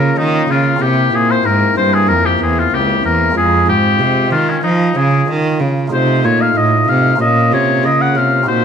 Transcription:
Already playing: C#3 A#3 C#4 F4 A#4
0.17 D#3 D#4
0.49 C#3 F4
0.77 A#3 C4 E4
0.81 C3 G4
1.13 A#2 G#4
1.31 C5
1.44 G#2 A#4
1.77 G2 C5
1.94 G#4
2.08 F2 A#4
2.26 G4
2.40 E2 G#4
2.59 F4
2.72 C#2 G4
3.04 E2 A#4
3.31 G#3 C4 F4
3.35 F2 G#4
3.67 G#2 G4
4.00 C3
4.31 D#3 F4
4.49 C#4
4.63 F3 D#4
4.96 C#3 G#4
5.28 D#3
5.60 C#3
5.88 A3 D#4 F4
5.92 C3 C5
6.25 A#2 C#5
6.41 F5
6.56 A2 D#5
6.88 C3 F5
7.16 A#3 C#4 F4
7.20 A#2 D#5
7.53 C3 C#5
7.84 C#3 D#5
8.01 F#5
8.16 C3 F5
8.43 A#2 C4 D#4 F#4
8.48 A#2 C5

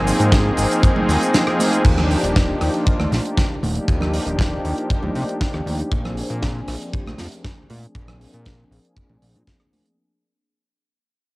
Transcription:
Already playing: G#1 F3 A#3 C4 D#4 G#4
0.07 open hi-hat, cabasa
0.20 G#2, closed hi-hat, cabasa
0.32 kick, snare, closed hi-hat, cabasa
0.57 G#1, open hi-hat, cabasa
0.70 F3 A#3 C4 D#4 G#4, closed hi-hat, cabasa
0.83 kick, closed hi-hat, cabasa
0.96 high conga, low conga
1.09 D#2, open hi-hat, cabasa
1.21 F3 A#3 C4 D#4 G#4, closed hi-hat, cabasa
1.34 snare, closed hi-hat, cabasa
1.47 F3 A#3 C4 D#4 G#4, cross-stick
1.60 open hi-hat, high conga, cabasa
1.73 closed hi-hat, cabasa
1.84 D#2 F3 A#3 D4 D#4 G4, kick, closed hi-hat, crash
1.98 cross-stick, low conga
2.11 open hi-hat
2.23 D#1, closed hi-hat
2.36 kick, snare, closed hi-hat
2.61 D#2, cross-stick, open hi-hat
2.74 F3 A#3 D4 D#4 F4, closed hi-hat
2.87 D#2, kick, closed hi-hat
3.00 D#2, cross-stick, high conga
3.12 A#1, snare, open hi-hat
3.24 F3 A#3 D4 D#4 G4, closed hi-hat
3.37 kick, snare, closed hi-hat
3.62 D#1, open hi-hat, high conga
3.75 F3 A#3 D4 D#4 G4, closed hi-hat
3.87 D#2 F3 A#3 D4 D#4 G4, kick, closed hi-hat
4.01 cross-stick, low conga
4.14 open hi-hat
4.26 D#1, closed hi-hat
4.39 kick, snare, closed hi-hat
4.65 D#2, open hi-hat
4.77 F3 A#3 D4 D#4 G4, closed hi-hat
4.90 kick, closed hi-hat
5.03 D#2, high conga, low conga
5.15 C3, open hi-hat
5.29 closed hi-hat
5.41 kick, snare, closed hi-hat
5.54 D#2, cross-stick
5.66 D#2, open hi-hat, high conga
5.79 closed hi-hat
5.91 A#1 F3 A#3 C4 D4 G#4, kick, closed hi-hat
6.05 cross-stick, low conga
6.17 open hi-hat
6.30 A#2, closed hi-hat
6.43 kick, snare, closed hi-hat
6.68 A#1, cross-stick, open hi-hat
6.80 F3 A#3 C4 D4 G4, closed hi-hat
6.94 A#1, kick, closed hi-hat
7.07 A#1, cross-stick, high conga
7.18 F2, snare, open hi-hat
7.32 F3 A#3 C4 D4 G#4, closed hi-hat
7.45 kick, snare, closed hi-hat
7.70 A#2, open hi-hat, high conga
7.82 F3 A#3 C4 D4 G#4, closed hi-hat
7.94 A#1 F3 A#3 C4 D4 G#4, kick, closed hi-hat
8.08 cross-stick, low conga
8.21 open hi-hat
8.34 A#2, closed hi-hat
8.45 kick, snare, closed hi-hat
8.71 A#1, open hi-hat
8.83 F3 A#3 C4 D4 G#4, closed hi-hat
8.97 kick, closed hi-hat
9.09 A#1, high conga, low conga
9.22 A#1, open hi-hat
9.35 A#2, closed hi-hat
9.47 kick, snare, closed hi-hat
9.60 cross-stick
9.73 open hi-hat, high conga
9.86 closed hi-hat

